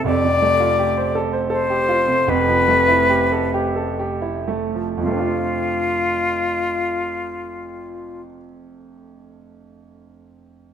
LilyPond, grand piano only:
\new Staff \with { instrumentName = "Grand piano" } { \time 3/4 \key f \major \tempo 4 = 63 <f,, f,>16 c16 a16 f'16 g'16 c''16 a'16 c''16 a'16 g'16 f'16 c16 | <f,, f,>16 f16 a16 e'16 g'16 a'16 g'16 a'16 g'16 e'16 a16 f16 | <f, c a c' d' f'>2.~ | <f, c a c' d' f'>2. | }